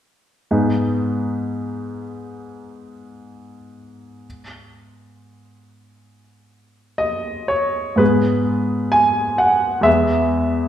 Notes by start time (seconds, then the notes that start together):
0.51 G#2 B3 D#4 G#4
6.98 D#5
7.48 C#5
7.96 G#2 G#3 B3 G#4 B4
8.92 G#5
9.38 F#5
9.81 E2 G#3 B3 G#4 E5